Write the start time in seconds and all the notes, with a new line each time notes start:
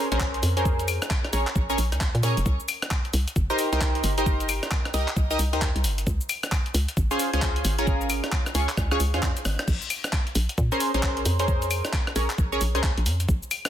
0.12 A#1 C#4 G#4 A#4 C5, closed hi-hat, cabasa
0.20 kick, clap, cabasa
0.34 closed hi-hat
0.43 F2, open hi-hat, cabasa
0.57 C#4 G#4 A#4 C5, closed hi-hat, cabasa
0.65 kick, cabasa
0.79 closed hi-hat, cabasa
0.88 open hi-hat, cabasa, claves
1.02 cross-stick, closed hi-hat, cabasa
1.10 kick, clap, cabasa, claves
1.25 cross-stick, closed hi-hat
1.33 A#1 C#4 G#4 A#4 C#5, open hi-hat, cabasa
1.47 clap, closed hi-hat, cabasa
1.56 A#1, kick, cabasa
1.70 C#4 G#4 A#4 C#5, cabasa
1.78 A#1, open hi-hat, cabasa
1.92 C#2, cross-stick, closed hi-hat, cabasa
2.01 kick, clap, cabasa
2.15 A#2, closed hi-hat
2.23 A#2 C#4 G#4 A#4 C#5, open hi-hat, cabasa
2.37 F1, closed hi-hat, cabasa
2.46 C2, kick, cabasa
2.60 cabasa
2.68 open hi-hat, cabasa, claves
2.82 cross-stick, closed hi-hat, cabasa
2.91 kick, clap, cabasa, claves
3.05 closed hi-hat
3.14 C2, open hi-hat, cabasa
3.28 closed hi-hat, cabasa
3.36 G1, kick, cabasa
3.50 D#4 G4 A#4 C5, cabasa
3.59 open hi-hat, cabasa
3.72 C2 D#4 G4 A#4 C5, closed hi-hat, cabasa
3.81 kick, clap, cabasa
3.95 closed hi-hat
4.04 G1, open hi-hat, cabasa
4.18 D#4 G4 A#4 C5, closed hi-hat, cabasa
4.26 kick, cabasa
4.40 closed hi-hat, cabasa
4.49 open hi-hat, cabasa, claves
4.63 cross-stick, closed hi-hat, cabasa
4.71 kick, clap, cabasa, claves
4.85 cross-stick, closed hi-hat
4.94 C2 D#4 G4 A#4 D#5, open hi-hat, cabasa
5.08 clap, closed hi-hat, cabasa
5.16 C2, kick, cabasa
5.30 D#4 G4 A#4 D#5, cabasa
5.39 C2, open hi-hat, cabasa
5.53 D#2 D#4 G4 A#4 C5, cross-stick, closed hi-hat, cabasa
5.62 kick, clap, cabasa
5.76 C2, closed hi-hat
5.84 G1, open hi-hat, cabasa
5.98 closed hi-hat, cabasa
6.07 C#2, kick, cabasa
6.21 cabasa
6.29 open hi-hat, cabasa, claves
6.43 cross-stick, closed hi-hat, cabasa
6.52 kick, clap, cabasa, claves
6.66 closed hi-hat
6.74 C#2, open hi-hat, cabasa
6.88 closed hi-hat, cabasa
6.97 G#1, kick, cabasa
7.11 C#4 F4 G#4 C5, cabasa
7.20 open hi-hat, cabasa
7.33 C#2 C#4 F4 G#4 C5, closed hi-hat, cabasa
7.42 kick, clap, cabasa
7.56 closed hi-hat
7.65 G#1, open hi-hat, cabasa
7.79 C#4 F4 G#4 A#4, closed hi-hat, cabasa
7.87 kick, cabasa
8.01 cabasa
8.10 open hi-hat, cabasa, claves
8.24 cross-stick, closed hi-hat, cabasa
8.32 kick, clap, cabasa, claves
8.46 cross-stick, closed hi-hat, cabasa
8.55 C#2 C#4 F4 G#4 C#5, open hi-hat, cabasa
8.69 clap, closed hi-hat, cabasa
8.77 C#2, kick, cross-stick, cabasa
8.91 C#4 F4 G#4 C#5, cross-stick, cabasa
9.00 C#2, open hi-hat, cabasa
9.14 F2 C#4 F4 G#4 C5, cross-stick, closed hi-hat, cabasa
9.23 kick, cross-stick, clap, cabasa
9.37 closed hi-hat, cabasa
9.45 G#1, cross-stick, open hi-hat, cabasa
9.59 cross-stick, closed hi-hat, cabasa
9.68 A#1, kick, crash, cabasa
9.82 cabasa
9.90 open hi-hat, cabasa, claves
10.04 cross-stick, closed hi-hat, cabasa
10.13 kick, clap, cabasa, claves
10.27 closed hi-hat
10.35 A#1, open hi-hat, cabasa
10.49 closed hi-hat, cabasa
10.58 A#2, kick, cabasa
10.72 C#4 G#4 A#4 C5, cabasa
10.80 open hi-hat, cabasa
10.94 A#1 C#4 G#4 A#4 C5, closed hi-hat, cabasa
11.03 kick, clap, cabasa
11.17 closed hi-hat
11.25 F2, open hi-hat, cabasa
11.39 C#4 G#4 A#4 C5, closed hi-hat, cabasa
11.48 kick, cabasa
11.62 closed hi-hat, cabasa
11.71 open hi-hat, cabasa, claves
11.85 cross-stick, closed hi-hat, cabasa
11.93 kick, clap, cabasa, claves
12.07 cross-stick, closed hi-hat
12.16 A#1 C#4 G#4 A#4 C#5, open hi-hat, cabasa
12.30 clap, closed hi-hat, cabasa
12.38 A#1, kick, cabasa
12.52 C#4 G#4 A#4 C#5, cabasa
12.61 A#1, open hi-hat, cabasa
12.75 C#2 C#4 G#4 A#4 C5, cross-stick, closed hi-hat, cabasa
12.83 kick, clap, cabasa
12.97 A#1, closed hi-hat
13.06 F2, open hi-hat, cabasa
13.20 closed hi-hat, cabasa
13.29 A#1, kick, cabasa
13.43 cabasa
13.51 open hi-hat, cabasa, claves
13.65 cross-stick, closed hi-hat, cabasa